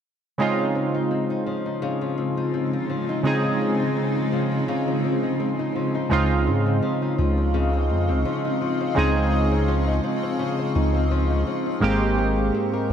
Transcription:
0.38 3.21 C#3 medium
0.38 6.07 C#3 medium
0.38 1.81 C#3 medium
0.38 3.21 G#3 medium
0.38 6.07 G#3 medium
0.38 6.07 C4 medium
0.38 3.22 C4 medium
0.38 6.07 D#4 medium
0.38 0.94 D#4 medium
0.38 3.22 D#4 medium
0.38 6.07 F4 medium
0.38 3.22 F4 medium
0.59 1.46 F3 medium
0.75 1.11 C4 medium
0.95 1.30 D#4 medium
1.11 2.17 C4 medium
1.30 1.65 D#4 medium
1.46 2.01 F3 medium
1.66 1.82 D#4 medium
1.82 3.24 C#3 medium
1.82 2.37 D#4 medium
2.01 2.89 F3 medium
2.18 2.53 C4 medium
2.37 2.73 D#4 medium
2.54 3.61 C4 medium
2.73 3.09 D#4 medium
2.90 3.44 F3 medium
3.09 3.25 D#4 medium
3.23 6.06 C#3 medium
3.23 4.67 C#3 medium
3.23 6.07 G#3 medium
3.23 6.07 C4 medium
3.23 3.80 D#4 medium
3.23 6.08 D#4 medium
3.23 6.08 G#4 medium
3.45 4.32 F3 medium
3.61 3.96 C4 medium
3.80 4.16 D#4 medium
3.97 5.04 C4 medium
4.16 4.51 D#4 medium
4.32 4.87 F3 medium
4.52 4.68 D#4 medium
4.68 6.10 C#3 medium
4.68 5.23 D#4 medium
4.88 5.75 F3 medium
5.04 5.39 C4 medium
5.23 5.59 D#4 medium
5.40 6.30 C4 medium
5.59 5.94 D#4 medium
5.76 6.50 F3 medium
5.95 6.47 D#4 medium
6.09 6.49 C#2 medium
6.09 8.92 C#3 medium
6.09 7.53 C#3 medium
6.09 8.92 G#3 medium
6.09 11.79 C4 medium
6.09 8.93 C4 medium
6.09 8.93 D#4 medium
6.09 8.94 F4 medium
6.09 11.79 D#5 medium
6.09 11.79 F5 medium
6.09 11.78 C#6 medium
6.31 6.66 C4 medium
6.47 6.81 G#2 loud
6.47 7.01 D#4 medium
6.66 7.37 C4 medium
6.83 7.17 F3 medium
7.02 7.89 D#4 medium
7.18 7.92 C#2 loud
7.18 8.24 F3 medium
7.38 7.73 C4 medium
7.54 8.96 C#3 medium
7.73 8.08 C4 medium
7.90 8.11 F2 medium
7.90 8.44 D#4 medium
8.09 8.25 C#2 medium
8.09 8.80 C4 medium
8.25 8.60 F3 medium
8.45 9.32 D#4 medium
8.61 9.67 F3 medium
8.81 9.16 C4 medium
8.95 10.00 C#2 loud
8.95 11.78 C#3 medium
8.95 10.38 C#3 medium
8.95 11.78 G#3 medium
8.95 11.79 C4 medium
8.95 11.79 D#4 medium
8.95 11.79 G#4 medium
9.16 9.52 C4 medium
9.33 9.87 D#4 medium
9.52 10.23 C4 medium
9.68 10.03 F3 medium
9.88 10.75 D#4 medium
10.04 11.10 F3 medium
10.23 10.58 C4 medium
10.39 11.90 C#3 medium
10.59 10.94 C4 medium
10.75 11.44 C#2 loud
10.75 11.30 D#4 medium
10.95 11.66 C4 medium
11.11 11.46 F3 medium
11.30 12.02 D#4 medium
11.47 11.82 F3 medium
11.66 12.21 C4 medium
11.80 12.52 G#1 loud
11.80 12.93 G#2 medium
11.80 12.93 G#3 medium
11.80 12.93 A#3 medium
11.80 12.93 C4 medium
11.80 12.93 G4 medium
11.80 12.93 A#4 medium
11.80 12.93 G5 medium
11.80 12.93 A#5 medium
11.80 12.93 C6 medium
12.02 12.37 G4 medium
12.18 12.72 A#4 medium
12.38 12.93 G4 medium
12.54 12.90 C4 medium
12.73 12.93 A#4 medium

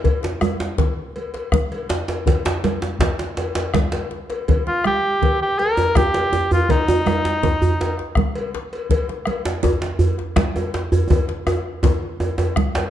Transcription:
0.04 bombo low medium
0.04 cowbell medium
0.04 djembe bass medium
0.04 low conga medium
0.23 bombo rim soft
0.23 djembe slap medium
0.23 high conga soft
0.41 bombo rim medium
0.41 cowbell soft
0.41 djembe tone medium
0.41 high conga medium
0.60 bombo rim soft
0.60 djembe slap medium
0.78 bombo low medium
0.78 cowbell soft
0.78 djembe slap medium
0.78 djembe bass medium
0.78 low conga medium
1.16 cowbell soft
1.16 high conga soft
1.34 bombo rim soft
1.34 cowbell soft
1.34 djembe slap medium
1.52 bombo rim medium
1.52 bombo low medium
1.52 djembe tone medium
1.52 high conga medium
1.52 djembe bass medium
1.52 low conga medium
1.71 cowbell soft
1.71 djembe slap soft
1.89 djembe slap medium
1.89 high conga soft
2.08 cowbell soft
2.08 djembe slap medium
2.26 bombo low medium
2.26 cowbell soft
2.26 djembe slap medium
2.26 high conga soft
2.26 djembe bass medium
2.26 low conga medium
2.45 djembe slap medium
2.45 djembe slap loud
2.45 high conga soft
2.64 cowbell soft
2.64 djembe slap medium
2.64 djembe tone medium
2.64 high conga medium
2.82 bombo rim soft
2.82 djembe slap medium
2.99 bombo low medium
2.99 cowbell soft
2.99 djembe slap loud
2.99 djembe slap medium
2.99 djembe bass medium
2.99 low conga medium
3.19 djembe slap medium
3.37 cowbell soft
3.37 djembe slap medium
3.37 djembe slap soft
3.37 high conga soft
3.55 bombo rim soft
3.55 cowbell medium
3.55 djembe slap medium
3.55 djembe slap soft
3.55 high conga soft
3.74 bombo rim medium
3.74 bombo low medium
3.74 djembe slap medium
3.74 djembe tone medium
3.74 high conga medium
3.74 djembe bass medium
3.74 low conga medium
3.92 cowbell soft
3.92 djembe slap medium
3.92 djembe bass soft
4.11 djembe slap soft
4.30 bombo rim soft
4.30 cowbell soft
4.30 djembe slap medium
4.48 bombo low loud
4.48 cowbell medium
4.48 djembe bass medium
4.48 low conga medium
4.67 4.84 F4 medium
4.67 bombo rim soft
4.67 djembe slap soft
4.67 high conga soft
4.84 5.37 G4 medium
4.84 bombo rim medium
4.84 high conga medium
4.84 djembe tone medium
5.04 bombo rim soft
5.22 bombo low medium
5.22 cowbell soft
5.22 low conga medium
5.22 djembe bass medium
5.42 5.60 G4 medium
5.58 5.98 A#4 loud
5.58 cowbell soft
5.58 high conga soft
5.77 cowbell soft
5.77 djembe slap soft
5.77 djembe tone medium
5.95 6.52 G4 medium
5.95 bombo rim medium
5.95 bombo low medium
5.95 djembe tone medium
5.95 high conga medium
5.95 djembe tone medium
5.95 low conga medium
5.95 djembe bass medium
6.14 cowbell soft
6.14 djembe slap medium
6.14 djembe slap soft
6.33 djembe slap medium
6.33 djembe tone medium
6.33 high conga soft
6.51 6.72 F4 medium
6.51 cowbell soft
6.51 djembe bass medium
6.69 8.17 D#4 medium
6.69 bombo low medium
6.69 cowbell medium
6.69 djembe slap medium
6.69 djembe bass medium
6.69 low conga medium
6.88 bombo rim soft
6.88 djembe slap medium
6.88 djembe tone loud
7.06 bombo rim medium
7.06 cowbell medium
7.06 high conga medium
7.06 djembe tone medium
7.25 bombo rim soft
7.25 djembe slap medium
7.43 bombo low medium
7.43 djembe slap medium
7.43 djembe tone medium
7.43 low conga medium
7.43 djembe bass medium
7.62 djembe bass medium
7.80 cowbell medium
7.80 djembe slap medium
7.80 high conga soft
7.97 bombo rim soft
7.97 djembe slap medium
8.15 bombo rim medium
8.15 bombo low medium
8.15 djembe tone medium
8.15 high conga medium
8.15 djembe bass medium
8.15 low conga medium
8.35 cowbell medium
8.35 djembe slap soft
8.54 djembe slap medium
8.54 high conga soft
8.73 cowbell medium
8.89 bombo low medium
8.89 cowbell medium
8.89 low conga medium
8.89 djembe bass medium
9.09 bombo rim soft
9.09 djembe slap medium
9.09 high conga soft
9.26 bombo rim medium
9.26 cowbell medium
9.26 high conga medium
9.26 djembe tone medium
9.45 bombo rim soft
9.45 djembe slap medium
9.63 bombo low medium
9.63 cowbell soft
9.63 djembe slap medium
9.63 djembe tone medium
9.63 low conga medium
9.63 djembe bass medium
9.82 djembe slap medium
9.99 cowbell soft
9.99 high conga soft
9.99 djembe bass medium
10.18 bombo rim soft
10.18 djembe slap medium
10.36 bombo rim medium
10.36 bombo low medium
10.36 djembe slap loud
10.36 djembe tone medium
10.36 high conga medium
10.36 djembe bass medium
10.36 low conga medium
10.55 cowbell soft
10.55 djembe slap soft
10.55 djembe tone medium
10.74 djembe slap medium
10.74 high conga soft
10.92 cowbell soft
10.92 djembe bass medium
11.10 bombo low medium
11.10 cowbell medium
11.10 djembe slap soft
11.10 high conga soft
11.10 djembe tone loud
11.10 djembe bass medium
11.10 low conga medium
11.28 bombo rim soft
11.28 djembe slap medium
11.47 bombo rim medium
11.47 cowbell soft
11.47 djembe tone medium
11.66 bombo rim soft
11.83 bombo low medium
11.83 cowbell soft
11.83 djembe slap medium
11.83 djembe tone medium
11.83 djembe bass medium
11.83 low conga medium
12.03 djembe slap soft
12.20 bombo rim soft
12.20 cowbell soft
12.20 djembe tone medium
12.38 bombo rim soft
12.38 cowbell soft
12.38 djembe slap medium
12.38 djembe tone medium
12.56 bombo rim medium
12.56 bombo low medium
12.56 high conga medium
12.56 low conga medium
12.56 djembe bass soft
12.75 bombo rim soft
12.75 cowbell soft
12.75 djembe slap medium
12.75 high conga soft
12.75 djembe bass soft

